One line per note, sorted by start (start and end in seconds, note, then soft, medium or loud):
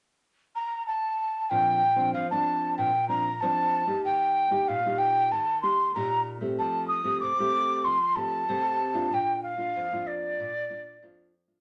0.55 0.85 A#5 medium
0.87 1.51 A5 medium
1.50 2.11 A#2 medium
1.50 1.81 F3 medium
1.50 1.81 C4 soft
1.50 1.81 D4 medium
1.50 2.13 G5 medium
1.96 2.13 F3 medium
1.96 2.24 C4 medium
1.96 2.24 D4 medium
2.13 2.30 F3 medium
2.13 2.29 F5 medium
2.30 2.89 F3 medium
2.30 2.89 C4 medium
2.30 2.90 D4 medium
2.30 2.75 A5 medium
2.77 3.38 A#2 medium
2.77 3.07 G5 medium
3.08 3.28 F3 soft
3.08 3.28 C4 soft
3.08 3.28 D4 medium
3.08 3.42 A#5 medium
3.40 3.84 F3 medium
3.40 3.84 C4 medium
3.40 3.85 D4 medium
3.40 4.04 A5 loud
3.87 4.46 A#3 medium
3.87 4.47 D#4 medium
3.87 4.47 G4 medium
4.05 4.65 D#3 medium
4.05 4.69 G5 medium
4.50 4.78 A#3 medium
4.50 4.78 D#4 medium
4.50 4.79 G4 medium
4.68 5.29 A#2 medium
4.68 4.99 F5 medium
4.86 5.43 A#3 medium
4.86 5.43 D#4 medium
4.86 5.44 G4 medium
4.98 5.33 G5 medium
5.31 5.92 D#3 medium
5.31 5.61 A5 medium
5.62 5.90 A#3 soft
5.62 5.90 D#4 soft
5.62 5.90 G4 medium
5.62 5.92 C6 medium
5.94 6.56 A#2 medium
5.94 6.38 A#3 medium
5.94 6.38 D#4 medium
5.94 6.38 G4 medium
5.94 6.29 A#5 medium
6.41 7.00 A3 medium
6.41 7.00 C4 medium
6.41 7.00 G4 medium
6.59 7.19 F3 medium
6.59 6.87 A5 medium
6.88 7.18 D#6 medium
7.04 7.32 A3 medium
7.04 7.32 C4 medium
7.04 7.32 G4 medium
7.20 7.82 C3 medium
7.20 7.86 D6 loud
7.39 7.97 A3 medium
7.39 7.97 C4 medium
7.39 7.97 G4 medium
7.84 8.45 F3 medium
7.84 8.17 C6 loud
8.15 8.43 A3 soft
8.15 8.43 C4 soft
8.15 8.43 G4 medium
8.15 9.15 A5 loud
8.49 9.09 C3 medium
8.49 8.78 A3 medium
8.49 8.78 C4 medium
8.49 8.79 G4 medium
8.94 9.53 A#3 medium
8.94 9.53 D4 medium
8.94 9.54 F4 medium
9.12 9.72 A#2 medium
9.12 9.42 G5 medium
9.43 10.08 F5 loud
9.57 9.85 A#3 medium
9.57 9.85 D4 medium
9.57 9.85 F4 medium
9.76 10.36 F2 medium
9.93 10.50 A#3 medium
9.93 10.50 D4 medium
9.93 10.50 F4 medium
10.07 11.34 D5 medium
10.40 10.99 A#2 medium
10.70 10.97 A#3 medium
10.70 10.97 D4 soft
10.70 10.97 F4 soft
11.02 11.60 F2 medium
11.02 11.32 A#3 medium
11.02 11.32 D4 medium
11.02 11.32 F4 medium
11.47 11.59 A#3 medium
11.47 11.59 D4 medium
11.47 11.59 F4 medium